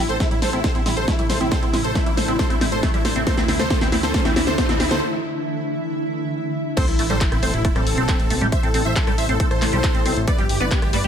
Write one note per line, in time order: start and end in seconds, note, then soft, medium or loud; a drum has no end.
0.00 3.23 C3 medium
0.00 3.23 G3 medium
0.00 6.73 A3 medium
0.00 1.50 E4 medium
0.00 riser medium
0.09 0.18 A1 medium
0.09 0.18 A4 medium
0.09 0.18 C5 medium
0.09 closed hi-hat soft
0.20 0.28 A3 medium
0.20 0.29 E4 medium
0.20 kick loud
0.20 snare medium
0.20 closed hi-hat medium
0.31 0.40 A1 medium
0.31 0.34 G3 medium
0.31 0.40 E4 medium
0.31 closed hi-hat soft
0.42 0.51 A1 loud
0.42 0.50 A4 medium
0.42 0.50 C5 medium
0.42 0.51 C5 medium
0.42 snare medium
0.42 open hi-hat medium
0.53 0.62 A1 medium
0.53 0.58 C4 medium
0.53 0.61 E4 medium
0.53 closed hi-hat soft
0.64 0.72 A4 medium
0.64 0.72 C5 medium
0.64 kick loud
0.64 snare medium
0.64 closed hi-hat medium
0.75 0.84 A1 medium
0.75 0.80 C4 loud
0.75 0.83 E4 medium
0.75 closed hi-hat medium
0.86 0.95 A1 loud
0.86 0.89 C4 loud
0.86 0.94 E4 medium
0.86 snare medium
0.86 open hi-hat loud
0.96 1.06 A1 medium
0.96 1.05 A4 medium
0.96 1.05 C5 medium
0.96 closed hi-hat soft
1.07 1.16 A3 medium
1.07 1.16 E4 medium
1.07 kick loud
1.07 snare medium
1.07 closed hi-hat medium
1.18 1.28 A1 medium
1.18 1.22 G3 medium
1.18 1.27 E4 medium
1.18 closed hi-hat medium
1.29 1.39 A1 loud
1.29 1.38 A4 medium
1.29 1.38 C5 medium
1.29 snare medium
1.29 open hi-hat loud
1.40 1.50 A1 medium
1.40 1.46 C4 medium
1.40 1.49 E4 medium
1.40 closed hi-hat medium
1.51 3.25 D4 medium
1.51 1.60 A4 medium
1.51 1.60 C5 loud
1.51 1.60 C5 medium
1.51 kick loud
1.51 snare medium
1.51 closed hi-hat medium
1.62 1.72 A1 medium
1.62 1.68 C4 loud
1.62 1.71 E4 medium
1.62 closed hi-hat medium
1.73 1.83 A1 loud
1.73 1.77 C4 loud
1.73 1.82 E4 medium
1.73 snare medium
1.73 open hi-hat loud
1.84 1.94 A1 medium
1.84 1.93 A4 medium
1.84 1.93 C5 medium
1.84 closed hi-hat soft
1.95 2.03 A3 medium
1.95 2.04 E4 medium
1.95 kick loud
1.95 snare medium
1.95 closed hi-hat medium
2.06 2.16 A1 medium
2.06 2.09 G3 medium
2.06 2.15 E4 medium
2.06 closed hi-hat medium
2.17 2.27 A1 loud
2.17 2.26 A4 medium
2.17 2.26 C5 medium
2.17 snare medium
2.17 open hi-hat medium
2.28 2.37 A1 medium
2.28 2.33 C4 medium
2.28 2.37 E4 medium
2.28 closed hi-hat medium
2.39 2.47 A4 medium
2.39 2.47 C5 medium
2.39 2.48 C5 medium
2.39 kick loud
2.39 snare medium
2.39 closed hi-hat medium
2.50 2.59 A1 medium
2.50 2.55 C4 loud
2.50 2.58 E4 medium
2.50 2.59 E4 medium
2.50 closed hi-hat medium
2.61 2.70 A1 loud
2.61 2.64 C4 loud
2.61 2.69 E4 medium
2.61 snare medium
2.61 open hi-hat loud
2.72 2.81 A1 medium
2.72 2.80 A4 medium
2.72 2.80 C5 medium
2.72 closed hi-hat medium
2.83 2.91 A3 medium
2.83 2.91 E4 medium
2.83 2.92 E4 medium
2.83 kick loud
2.83 snare medium
2.83 closed hi-hat medium
2.93 3.03 A1 medium
2.93 2.97 G3 medium
2.93 3.02 E4 medium
2.93 closed hi-hat medium
3.05 3.14 A1 loud
3.05 3.13 A4 medium
3.05 3.13 C5 medium
3.05 snare medium
3.05 open hi-hat medium
3.15 3.25 A1 medium
3.15 3.21 C4 loud
3.15 3.24 E4 medium
3.15 closed hi-hat medium
3.27 6.74 D3 medium
3.27 6.74 E3 medium
3.27 6.74 E4 medium
3.27 3.35 A4 medium
3.27 3.35 C5 loud
3.27 kick loud
3.27 snare medium
3.27 closed hi-hat medium
3.38 3.47 D2 medium
3.38 3.43 C4 loud
3.38 3.46 E4 medium
3.38 snare medium
3.38 closed hi-hat medium
3.48 3.58 D2 loud
3.48 3.52 C4 loud
3.48 3.57 E4 medium
3.48 snare medium
3.48 open hi-hat loud
3.59 3.69 D2 medium
3.59 3.68 A4 medium
3.59 3.68 C5 medium
3.59 3.68 C5 loud
3.59 snare medium
3.59 closed hi-hat medium
3.70 3.79 A4 medium
3.70 3.79 C5 loud
3.70 kick loud
3.70 snare loud
3.70 closed hi-hat medium
3.81 3.91 D2 medium
3.81 3.87 C4 loud
3.81 3.90 E4 medium
3.81 snare medium
3.81 closed hi-hat medium
3.92 4.02 D2 loud
3.92 3.96 C4 loud
3.92 4.01 E4 medium
3.92 snare medium
3.92 open hi-hat medium
4.03 4.13 D2 medium
4.03 4.12 A4 medium
4.03 4.12 C5 medium
4.03 snare medium
4.03 closed hi-hat medium
4.14 4.23 A4 medium
4.14 4.23 C5 loud
4.14 kick loud
4.14 snare loud
4.14 closed hi-hat medium
4.25 4.34 D2 medium
4.25 4.31 C4 loud
4.25 4.34 E4 medium
4.25 snare medium
4.25 closed hi-hat medium
4.36 4.45 D2 loud
4.36 4.39 C4 loud
4.36 4.45 E4 medium
4.36 snare loud
4.36 open hi-hat loud
4.47 4.56 D2 loud
4.47 4.56 A4 medium
4.47 4.56 C5 medium
4.47 4.56 C5 loud
4.47 snare medium
4.47 closed hi-hat medium
4.58 4.67 A4 medium
4.58 4.67 C5 loud
4.58 kick loud
4.58 snare loud
4.58 closed hi-hat medium
4.69 4.78 D2 medium
4.69 4.74 C4 loud
4.69 4.77 E4 medium
4.69 4.78 E4 medium
4.69 snare medium
4.69 closed hi-hat medium
4.80 4.89 D2 loud
4.80 4.83 C4 loud
4.80 4.88 E4 medium
4.80 4.89 E4 medium
4.80 snare loud
4.80 open hi-hat medium
4.91 5.00 D2 medium
4.91 4.99 A4 medium
4.91 4.99 C5 loud
4.91 snare medium
4.91 closed hi-hat medium
6.77 10.24 C3 medium
6.77 10.24 G3 medium
6.77 11.07 A3 medium
6.77 6.85 C4 medium
6.77 10.24 E4 medium
6.77 6.86 A4 medium
6.77 6.85 C5 loud
6.77 6.86 C5 loud
6.77 kick loud
6.77 closed hi-hat medium
6.77 crash loud
6.77 sub drop medium
6.88 6.97 A1 medium
6.88 6.96 E4 medium
6.88 6.97 E4 medium
6.88 closed hi-hat soft
6.99 7.08 A1 loud
6.99 7.02 A3 loud
6.99 7.07 E4 medium
6.99 7.08 E4 medium
6.99 open hi-hat loud
7.10 7.19 A1 medium
7.10 7.15 G3 loud
7.10 7.18 A4 medium
7.10 7.18 C5 loud
7.10 7.19 C5 medium
7.10 closed hi-hat soft
7.21 7.29 E4 medium
7.21 kick loud
7.21 clap loud
7.21 closed hi-hat loud
7.31 7.41 A1 medium
7.31 7.37 C4 loud
7.31 7.40 E4 medium
7.31 cross-stick medium
7.31 closed hi-hat soft
7.42 7.52 A1 loud
7.42 7.51 C4 medium
7.42 7.51 A4 medium
7.42 7.51 C5 medium
7.42 open hi-hat medium
7.53 7.63 A1 medium
7.53 7.62 E4 medium
7.53 closed hi-hat soft
7.64 7.68 A3 loud
7.64 7.73 E4 medium
7.64 kick loud
7.64 closed hi-hat loud
7.75 7.85 A1 medium
7.75 7.81 G3 loud
7.75 8.44 C4 medium
7.75 8.43 A4 loud
7.75 8.44 A4 loud
7.75 cross-stick medium
7.75 closed hi-hat soft
7.87 7.96 A1 loud
7.87 open hi-hat loud
7.97 8.07 B1 loud
7.97 8.03 C4 loud
7.97 closed hi-hat soft
8.09 8.16 C4 medium
8.09 kick loud
8.09 clap loud
8.09 closed hi-hat loud
8.19 8.29 A1 medium
8.19 closed hi-hat soft
8.30 8.40 B1 loud
8.30 8.34 A3 loud
8.30 open hi-hat medium
8.41 8.51 A1 medium
8.41 8.47 G3 loud
8.41 closed hi-hat soft
8.52 8.61 C5 medium
8.52 8.61 E5 loud
8.52 kick loud
8.52 closed hi-hat medium
8.63 8.72 A1 medium
8.63 8.68 C4 loud
8.63 8.72 A4 medium
8.63 closed hi-hat soft
8.74 8.83 A1 loud
8.74 8.82 C4 medium
8.74 8.83 A4 medium
8.74 open hi-hat loud
8.85 8.94 A1 loud
8.85 8.94 C5 medium
8.85 8.94 E5 loud
8.85 8.94 E5 medium
8.85 closed hi-hat soft
8.96 8.99 A3 loud
8.96 9.04 A4 medium
8.96 9.05 A4 medium
8.96 kick loud
8.96 clap loud
8.96 closed hi-hat medium
9.07 9.16 A1 medium
9.07 9.12 G3 loud
9.07 9.15 A4 medium
9.07 9.16 A4 medium
9.07 cross-stick medium
9.07 closed hi-hat soft
9.18 9.27 A1 loud
9.18 9.26 C5 medium
9.18 9.26 E5 medium
9.18 9.26 E5 loud
9.18 open hi-hat medium
9.29 9.38 A1 loud
9.29 9.34 C4 loud
9.29 9.37 A4 medium
9.29 closed hi-hat soft
9.40 9.48 C4 medium
9.40 9.48 A4 medium
9.40 kick loud
9.40 closed hi-hat loud
9.51 9.60 A1 medium
9.51 10.19 A4 medium
9.51 10.19 C5 loud
9.51 cross-stick medium
9.51 closed hi-hat soft
9.62 9.71 A1 loud
9.62 9.65 A3 loud
9.62 cross-stick medium
9.62 clap medium
9.62 open hi-hat loud
9.73 9.82 B1 loud
9.73 9.78 G3 loud
9.73 closed hi-hat soft
9.84 kick loud
9.84 clap loud
9.84 closed hi-hat loud
9.95 10.04 A1 medium
9.95 10.00 C4 loud
9.95 closed hi-hat soft
10.06 10.15 B1 loud
10.06 10.14 C4 medium
10.06 cross-stick medium
10.06 open hi-hat medium
10.17 10.26 A1 medium
10.17 closed hi-hat soft
10.27 11.07 D3 medium
10.27 10.31 A3 loud
10.27 11.07 B3 medium
10.27 11.07 G4 medium
10.27 10.36 B4 medium
10.27 10.36 D5 loud
10.27 kick loud
10.27 closed hi-hat loud
10.38 10.48 G1 medium
10.38 10.44 G3 loud
10.38 10.47 G4 medium
10.38 closed hi-hat soft
10.49 10.59 G1 loud
10.49 10.58 G4 medium
10.49 open hi-hat loud
10.60 10.69 G1 loud
10.60 10.66 B3 loud
10.60 10.69 B4 medium
10.60 10.69 D5 loud
10.60 closed hi-hat soft
10.71 10.79 B3 medium
10.71 10.80 G4 medium
10.71 kick loud
10.71 clap loud
10.71 closed hi-hat medium
10.82 10.91 G1 medium
10.82 10.91 G4 medium
10.82 cross-stick medium
10.82 closed hi-hat soft
10.93 11.02 G1 loud
10.93 10.96 A3 loud
10.93 11.02 B4 medium
10.93 11.02 D5 medium
10.93 11.02 D5 loud
10.93 open hi-hat loud
11.04 11.07 G1 loud
11.04 11.07 G3 loud
11.04 11.07 G4 medium
11.04 closed hi-hat soft